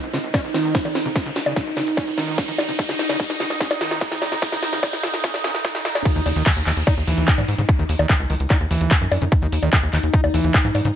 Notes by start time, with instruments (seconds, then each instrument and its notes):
Already playing: ambient pad D#4, riser
0.03 analog synth bass C#2, closed hi-hat
0.14 analog synth bass C#2, acid bass C#3, snare, open hi-hat
0.24 analog synth bass C#2, closed hi-hat
0.34 acid bass C#4, kick, snare, closed hi-hat, high bongo
0.44 analog synth bass C#2, closed hi-hat
0.54 analog synth bass C#2, acid bass D#3, snare, open hi-hat
0.65 analog synth bass C#2, closed hi-hat
0.75 acid bass C3, kick, snare, closed hi-hat
0.85 analog synth bass F2, acid bass D#3, closed hi-hat, high bongo
0.95 analog synth bass F2, snare, open hi-hat
1.05 analog synth bass F2, acid bass C3, closed hi-hat
1.16 kick, snare, closed hi-hat
1.26 analog synth bass C#2, acid bass C#3, closed hi-hat
1.36 analog synth bass C#2, snare, open hi-hat
1.46 analog synth bass C#2, acid bass C#3, closed hi-hat, high bongo
1.56 acid bass C#3, kick, snare, closed hi-hat
1.67 analog synth bass G#1, closed hi-hat
1.77 analog synth bass G#1, acid bass C#3, snare, open hi-hat
1.87 analog synth bass G#1, closed hi-hat
1.97 acid bass C#4, kick, snare, closed hi-hat, high bongo
2.07 analog synth bass C#2, closed hi-hat
2.18 analog synth bass C#2, acid bass D#3, snare, open hi-hat
2.28 analog synth bass C#2, closed hi-hat
2.38 acid bass C3, kick, snare, closed hi-hat
2.48 analog synth bass C#2, acid bass D#3, closed hi-hat
2.58 analog synth bass C#2, snare, open hi-hat, high bongo
2.69 analog synth bass C#2, acid bass C3, closed hi-hat
2.79 kick, snare, closed hi-hat
2.89 analog synth bass C#2, acid bass C#3, snare, closed hi-hat
2.99 analog synth bass C#2, snare, open hi-hat
3.09 analog synth bass C#2, acid bass C#3, snare, closed hi-hat, high bongo
3.20 acid bass C#3, kick, snare, closed hi-hat
3.30 analog synth bass C#2, snare, closed hi-hat
3.40 analog synth bass C#2, acid bass C#3, snare, open hi-hat
3.50 analog synth bass C#2, snare, closed hi-hat
3.61 acid bass C#4, kick, snare, closed hi-hat
3.71 analog synth bass C#2, snare, closed hi-hat, high bongo
3.81 analog synth bass C#2, acid bass D#3, snare, open hi-hat
3.91 analog synth bass C#2, snare, closed hi-hat
4.01 acid bass C3, kick, snare, closed hi-hat
4.12 analog synth bass F2, acid bass D#3, snare, closed hi-hat
4.22 analog synth bass F2, snare, open hi-hat, high bongo
4.32 analog synth bass F2, acid bass C3, snare, closed hi-hat
4.42 kick, snare, closed hi-hat
4.52 analog synth bass C#2, acid bass C#3, snare, closed hi-hat
4.63 analog synth bass C#2, snare, open hi-hat
4.73 analog synth bass C#2, acid bass C#3, snare, closed hi-hat
4.83 acid bass C#3, kick, snare, closed hi-hat, high bongo
4.93 analog synth bass G#1, snare, closed hi-hat
5.03 analog synth bass G#1, acid bass C#3, snare, open hi-hat
5.14 analog synth bass G#1, snare, closed hi-hat
5.24 acid bass C#4, kick, snare, closed hi-hat, swell
5.34 analog synth bass C#2, snare, closed hi-hat, high bongo
5.44 analog synth bass C#2, acid bass C#4, snare, open hi-hat
5.54 analog synth bass C#2, snare, closed hi-hat
5.65 acid bass D#3, kick, snare, closed hi-hat
5.75 analog synth bass F2, acid bass C#3, snare, closed hi-hat
5.85 analog synth bass F2, acid bass D#3, snare, open hi-hat
5.95 analog synth bass F2, acid bass C#3, snare, closed hi-hat, high bongo
6.05 ambient pad D#4, kick, closed hi-hat, crash, downlifter
6.16 analog synth bass D#2, acid bass D#3, closed hi-hat
6.26 analog synth bass D#2, open hi-hat, high bongo
6.36 analog synth bass D#2, acid bass D#3, closed hi-hat
6.46 acid bass D#3, kick, clap, closed hi-hat
6.56 analog synth bass D#2, closed hi-hat
6.67 analog synth bass D#2, acid bass D#3, clap, open hi-hat
6.77 analog synth bass D#2, closed hi-hat
6.87 acid bass D#4, kick, closed hi-hat, high bongo
6.97 analog synth bass D#2, closed hi-hat
7.07 analog synth bass D#2, acid bass E3, open hi-hat
7.18 analog synth bass D#2, closed hi-hat
7.28 acid bass C#3, kick, clap, closed hi-hat
7.38 analog synth bass G#2, acid bass E3, closed hi-hat, high bongo
7.48 analog synth bass G#2, open hi-hat
7.58 analog synth bass G#2, acid bass C#3, closed hi-hat
7.69 kick, closed hi-hat
7.79 analog synth bass D#2, acid bass D#3, closed hi-hat
7.89 analog synth bass D#2, open hi-hat
7.99 analog synth bass D#2, acid bass D#3, closed hi-hat, high bongo
8.10 acid bass D#3, kick, clap, closed hi-hat
8.20 analog synth bass C#2, closed hi-hat
8.30 analog synth bass C#2, acid bass D#3, open hi-hat
8.40 analog synth bass C#2, closed hi-hat
8.50 acid bass D#4, kick, clap, closed hi-hat, high bongo
8.61 analog synth bass D#2, closed hi-hat
8.71 analog synth bass D#2, acid bass E3, open hi-hat
8.81 analog synth bass D#2, closed hi-hat
8.91 acid bass C#3, kick, clap, closed hi-hat
9.01 analog synth bass F#2, acid bass E3, closed hi-hat
9.12 analog synth bass F#2, open hi-hat, high bongo
9.22 analog synth bass F#2, acid bass C#3, closed hi-hat
9.32 kick, closed hi-hat
9.42 analog synth bass D#2, acid bass D#3, closed hi-hat
9.52 analog synth bass D#2, open hi-hat
9.63 analog synth bass D#2, acid bass D#3, closed hi-hat, high bongo
9.73 acid bass D#3, kick, clap, closed hi-hat
9.83 analog synth bass D#2, closed hi-hat
9.93 analog synth bass D#2, acid bass D#3, clap, open hi-hat
10.03 analog synth bass D#2, closed hi-hat
10.14 acid bass D#4, kick, closed hi-hat
10.24 analog synth bass D#2, closed hi-hat, high bongo
10.34 analog synth bass D#2, acid bass E3, open hi-hat
10.44 analog synth bass D#2, closed hi-hat
10.54 acid bass C#3, kick, clap, closed hi-hat
10.65 analog synth bass G#2, acid bass E3, closed hi-hat
10.75 analog synth bass G#2, open hi-hat, high bongo
10.85 analog synth bass G#2, acid bass C#3, closed hi-hat